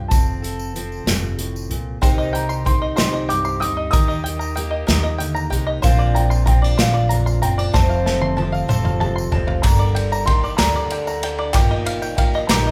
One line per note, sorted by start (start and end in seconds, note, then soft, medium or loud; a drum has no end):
0.00 0.42 F4 medium
0.08 1.03 F1 medium
0.08 1.06 F2 medium
0.08 0.76 C4 medium
0.08 1.01 A5 medium
0.08 kick loud
0.08 closed hi-hat medium
0.08 tambourine medium
0.27 tambourine soft
0.42 1.98 A4 medium
0.42 closed hi-hat soft
0.42 tambourine soft
0.59 tambourine medium
0.75 1.99 F3 medium
0.75 2.02 C4 medium
0.75 closed hi-hat medium
0.75 tambourine soft
0.92 tambourine soft
1.06 1.67 F1 medium
1.06 1.38 G2 medium
1.06 snare medium
1.06 closed hi-hat medium
1.06 tambourine medium
1.38 1.70 A2 soft
1.38 closed hi-hat medium
1.56 tambourine medium
1.70 2.00 C2 medium
1.70 2.01 A#2 medium
1.70 closed hi-hat medium
1.70 tambourine soft
2.01 2.94 C2 medium
2.01 2.65 C3 medium
2.01 2.64 D#3 medium
2.01 2.65 C4 medium
2.01 2.66 D#4 medium
2.01 2.68 G4 medium
2.01 2.66 C5 medium
2.01 2.35 G5 medium
2.01 kick medium
2.01 closed hi-hat medium
2.01 tambourine medium
2.18 2.80 D#5 medium
2.18 tambourine soft
2.33 2.98 G4 medium
2.33 2.65 G5 medium
2.33 2.67 A#5 medium
2.33 closed hi-hat medium
2.49 3.13 C6 medium
2.49 tambourine medium
2.65 2.97 D#3 soft
2.65 2.97 C4 medium
2.65 2.96 D#4 soft
2.65 2.95 G4 medium
2.65 3.28 G5 medium
2.65 2.94 C6 medium
2.65 kick medium
2.65 closed hi-hat medium
2.82 3.12 D#5 medium
2.96 3.58 C2 medium
2.96 3.62 C3 soft
2.96 3.62 D#3 soft
2.96 3.61 C4 medium
2.96 3.60 D#4 medium
2.96 3.58 G4 medium
2.96 3.61 C5 medium
2.96 3.26 C6 medium
2.96 snare loud
2.96 closed hi-hat medium
2.96 tambourine medium
3.13 3.76 D#5 medium
3.13 tambourine soft
3.29 3.90 G2 medium
3.29 3.59 G5 medium
3.29 3.62 D6 medium
3.29 closed hi-hat medium
3.29 tambourine soft
3.45 3.93 C6 medium
3.45 tambourine medium
3.60 3.91 D2 medium
3.60 3.91 C4 soft
3.60 3.91 D#4 soft
3.60 3.92 G4 medium
3.60 3.93 G5 medium
3.60 3.89 D#6 medium
3.60 closed hi-hat medium
3.77 3.93 D#5 medium
3.91 4.85 D#2 medium
3.91 4.54 D#3 medium
3.91 4.56 A#3 medium
3.91 4.56 D#4 medium
3.91 4.56 G4 medium
3.91 4.57 A#4 medium
3.91 5.47 D#6 medium
3.91 kick loud
3.91 closed hi-hat medium
3.91 tambourine medium
4.08 4.69 D#5 medium
4.08 tambourine soft
4.24 4.54 G5 medium
4.24 closed hi-hat medium
4.28 4.57 G4 medium
4.39 5.04 A#5 medium
4.39 tambourine medium
4.55 4.88 D#3 soft
4.55 4.87 A#3 soft
4.55 4.89 D#4 soft
4.55 4.85 G4 medium
4.55 5.17 G5 medium
4.55 closed hi-hat medium
4.71 5.02 D#5 medium
4.87 5.48 D#2 medium
4.87 5.52 D#3 medium
4.87 5.52 A#3 medium
4.87 5.49 G4 medium
4.87 5.51 A#4 medium
4.87 snare loud
4.87 closed hi-hat medium
4.87 tambourine medium
5.03 5.65 D#5 medium
5.03 tambourine soft
5.18 5.52 D3 medium
5.18 5.49 G5 medium
5.18 closed hi-hat medium
5.18 tambourine soft
5.35 5.83 A#5 medium
5.35 tambourine medium
5.50 5.82 C2 medium
5.50 5.84 C3 medium
5.50 5.83 A#3 soft
5.50 5.84 D#4 soft
5.50 5.83 G4 medium
5.50 5.83 G5 medium
5.50 closed hi-hat medium
5.67 5.83 D#5 medium
5.82 6.75 A#1 medium
5.82 6.47 A#2 medium
5.82 6.46 F3 medium
5.82 6.47 C4 medium
5.82 6.47 D4 medium
5.82 6.49 F4 medium
5.82 6.47 C5 medium
5.82 6.16 F5 medium
5.82 kick loud
5.82 closed hi-hat medium
5.82 tambourine medium
5.99 6.61 D5 medium
5.99 tambourine soft
6.15 6.80 F4 medium
6.15 6.46 G5 medium
6.15 6.30 A#5 medium
6.15 closed hi-hat medium
6.30 6.45 C6 medium
6.30 tambourine medium
6.46 6.78 F3 soft
6.46 6.79 C4 medium
6.46 6.78 D4 medium
6.46 6.78 F4 medium
6.46 6.80 G5 medium
6.46 7.08 A#5 medium
6.46 kick medium
6.46 closed hi-hat medium
6.62 7.42 D4 soft
6.62 6.92 D5 medium
6.78 7.39 A#1 medium
6.78 7.43 A#2 medium
6.78 7.43 F3 medium
6.78 7.43 C4 medium
6.78 7.43 D4 medium
6.78 7.40 F4 medium
6.78 7.42 C5 medium
6.78 7.45 F5 medium
6.78 snare loud
6.78 closed hi-hat medium
6.78 tambourine medium
6.94 7.57 D5 medium
6.94 tambourine soft
7.09 7.74 F2 medium
7.09 7.26 A#5 medium
7.09 closed hi-hat medium
7.09 tambourine soft
7.26 7.41 C6 medium
7.26 tambourine medium
7.42 7.73 F#1 medium
7.42 7.74 C4 soft
7.42 7.75 D4 soft
7.42 7.74 F4 soft
7.42 7.72 G5 medium
7.42 7.74 A#5 medium
7.42 closed hi-hat medium
7.58 7.74 D4 soft
7.58 7.74 D5 medium
7.73 8.65 F1 medium
7.73 8.37 F2 medium
7.73 8.37 C3 medium
7.73 8.35 F3 medium
7.73 8.37 A3 medium
7.73 8.37 C4 medium
7.73 8.38 F4 medium
7.73 8.38 C5 medium
7.73 9.29 A5 medium
7.73 kick medium
7.73 snare medium
7.73 tambourine medium
7.89 8.51 F5 medium
7.89 tambourine soft
8.06 8.68 A4 medium
8.06 8.36 A5 medium
8.06 snare medium
8.22 8.85 C6 medium
8.22 high tom medium
8.36 8.69 F3 soft
8.36 8.68 A3 medium
8.36 8.68 C4 medium
8.36 8.67 F4 medium
8.36 8.99 A5 medium
8.36 high tom medium
8.52 8.83 F5 medium
8.52 tambourine soft
8.68 9.29 F1 medium
8.68 9.34 F2 medium
8.68 9.33 C3 medium
8.68 9.33 F3 medium
8.68 9.33 A3 medium
8.68 9.32 C4 medium
8.68 9.30 F4 medium
8.68 9.61 A4 medium
8.68 9.33 C5 medium
8.68 mid tom medium
8.68 tambourine medium
8.85 9.46 F5 medium
8.85 mid tom medium
9.00 9.61 C3 medium
9.00 9.31 A5 medium
9.00 mid tom medium
9.00 tambourine soft
9.16 9.64 C6 medium
9.16 tambourine medium
9.32 9.63 F1 medium
9.32 9.64 F3 soft
9.32 9.65 A3 soft
9.32 9.65 C4 soft
9.32 9.64 F4 medium
9.32 9.64 A5 medium
9.32 floor tom medium
9.47 9.64 F5 medium
9.47 floor tom medium
9.62 10.56 G1 medium
9.62 10.28 G2 medium
9.62 10.23 D3 medium
9.62 10.28 D3 medium
9.62 10.26 G3 medium
9.62 10.27 A#3 medium
9.62 10.27 D4 medium
9.62 10.29 G4 medium
9.62 10.27 A#4 medium
9.62 10.29 A#5 medium
9.62 kick loud
9.62 clap medium
9.62 ride medium
9.66 tambourine medium
9.79 10.42 D5 medium
9.95 10.26 G5 medium
9.95 clap soft
9.95 ride medium
9.95 tambourine soft
10.12 10.76 A#5 medium
10.12 tambourine medium
10.26 10.56 D#3 medium
10.26 10.58 G3 medium
10.26 10.58 A#3 medium
10.26 10.57 D4 medium
10.26 10.56 G4 medium
10.26 10.91 G5 medium
10.26 10.56 C6 loud
10.26 kick medium
10.26 ride medium
10.44 10.74 D5 medium
10.44 tambourine soft
10.57 11.50 D2 medium
10.57 11.23 G2 soft
10.57 11.50 D3 medium
10.57 11.23 D3 medium
10.57 11.24 G3 medium
10.57 11.23 A#3 medium
10.57 11.22 D4 medium
10.57 11.21 G4 medium
10.57 11.23 A#4 medium
10.57 11.49 A#5 medium
10.57 snare loud
10.57 clap medium
10.57 ride medium
10.57 tambourine medium
10.76 11.37 D5 medium
10.76 tambourine soft
10.90 11.22 G5 medium
10.90 ride medium
10.90 tambourine soft
11.07 11.55 A#5 medium
11.07 tambourine medium
11.22 11.54 G3 soft
11.22 11.53 A#3 soft
11.22 11.54 D4 soft
11.22 11.54 G4 medium
11.22 11.55 G5 medium
11.22 ride medium
11.39 11.55 D5 medium
11.39 clap soft
11.53 12.45 G1 medium
11.53 12.17 G2 medium
11.53 12.13 A#2 medium
11.53 12.17 D#3 medium
11.53 12.14 F3 medium
11.53 12.16 A#3 medium
11.53 12.17 D#4 medium
11.53 12.18 G4 medium
11.53 12.15 G5 medium
11.53 kick loud
11.53 clap medium
11.53 ride medium
11.53 tambourine medium
11.71 12.34 D#5 medium
11.86 12.17 F5 medium
11.86 clap soft
11.86 ride medium
11.86 tambourine soft
12.02 12.66 G5 medium
12.02 tambourine medium
12.15 12.47 A#2 medium
12.15 12.48 F3 medium
12.15 12.48 A#3 medium
12.15 12.48 D#4 medium
12.15 12.48 G4 medium
12.15 12.71 F5 medium
12.15 12.50 G5 medium
12.15 kick medium
12.15 ride medium
12.34 12.66 D#5 medium
12.34 tambourine soft
12.47 12.71 A#1 medium
12.47 12.71 G2 medium
12.47 12.71 D#3 medium
12.47 12.71 F3 medium
12.47 12.71 A#3 medium
12.47 12.71 D#4 medium
12.47 12.71 G4 medium
12.47 12.71 A#5 medium
12.47 snare loud
12.47 clap medium
12.47 ride medium
12.47 tambourine medium
12.67 12.71 D#5 medium
12.67 tambourine soft